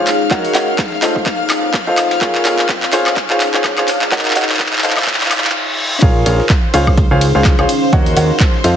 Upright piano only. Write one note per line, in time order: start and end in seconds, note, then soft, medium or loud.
0.31 0.52 F#4 medium
0.31 0.52 A#4 medium
0.31 0.52 C#5 medium
0.31 0.52 D#5 medium
0.31 0.52 F#5 loud
0.55 0.72 F#4 medium
0.55 0.72 A#4 medium
0.55 0.72 C#5 medium
0.55 0.72 D#5 medium
0.55 0.72 F#5 medium
1.02 1.19 F4 medium
1.02 1.19 A4 medium
1.02 1.19 C5 medium
1.02 1.19 D#5 medium
1.02 1.19 F5 medium
1.87 2.19 F4 medium
1.87 2.19 A4 medium
1.87 2.19 C5 medium
1.87 2.19 D#5 medium
1.87 2.19 F5 medium
2.21 2.43 F4 medium
2.21 2.43 G#4 medium
2.21 2.43 A#4 medium
2.21 2.43 C#5 medium
2.21 2.43 F5 loud
2.45 2.62 F4 medium
2.45 2.62 G#4 medium
2.45 2.62 A#4 medium
2.45 2.62 C#5 medium
2.45 2.62 F5 medium
2.93 3.10 F4 loud
2.93 3.10 G#4 medium
2.93 3.10 C5 medium
2.93 3.10 C#5 medium
2.93 3.10 F5 loud
3.30 3.45 F4 medium
3.30 3.45 G#4 medium
3.30 3.45 C5 medium
3.30 3.45 C#5 medium
3.30 3.45 F5 medium
3.54 3.69 F4 medium
3.54 3.69 G#4 medium
3.54 3.69 C5 medium
3.54 3.69 C#5 medium
3.54 3.69 F5 medium
3.78 3.87 F4 medium
3.78 3.87 G#4 medium
3.78 3.87 C5 medium
3.78 3.87 C#5 medium
3.78 3.87 F5 medium
4.12 4.33 F#4 loud
4.12 4.33 A#4 medium
4.12 4.33 C#5 medium
4.12 4.33 D#5 medium
4.12 4.33 F#5 loud
4.36 4.53 F#4 medium
4.36 4.53 A#4 medium
4.36 4.53 C#5 medium
4.36 4.53 D#5 medium
4.36 4.53 F#5 medium
4.83 5.00 F4 medium
4.83 5.00 A4 medium
4.83 5.00 C5 medium
4.83 5.00 D#5 medium
4.83 5.00 F5 medium
6.02 6.24 F4 medium
6.02 6.24 G#4 medium
6.02 6.24 A#4 medium
6.02 6.24 C#5 medium
6.02 6.24 F5 loud
6.26 6.43 F4 medium
6.26 6.43 G#4 medium
6.26 6.43 A#4 medium
6.26 6.43 C#5 medium
6.26 6.43 F5 medium
6.74 6.91 F4 medium
6.74 6.91 G#4 medium
6.74 6.91 C5 medium
6.74 6.91 C#5 medium
6.74 6.91 F5 loud
7.11 7.26 F4 medium
7.11 7.26 G#4 medium
7.11 7.26 C5 medium
7.11 7.26 C#5 medium
7.11 7.26 F5 medium
7.35 7.50 F4 medium
7.35 7.50 G#4 medium
7.35 7.50 C5 medium
7.35 7.50 C#5 medium
7.35 7.50 F5 medium
7.59 7.68 F4 medium
7.59 7.68 G#4 medium
7.59 7.68 C5 medium
7.59 7.68 C#5 medium
7.59 7.68 F5 medium
7.93 8.14 F#4 medium
7.93 8.14 A#4 medium
7.93 8.14 C#5 medium
7.93 8.14 D#5 medium
7.93 8.14 F#5 loud
8.17 8.33 F#4 medium
8.17 8.33 A#4 medium
8.17 8.33 C#5 medium
8.17 8.33 D#5 medium
8.17 8.33 F#5 medium
8.64 8.76 F4 medium
8.64 8.76 A4 medium
8.64 8.76 C5 medium
8.64 8.76 D#5 medium
8.64 8.76 F5 medium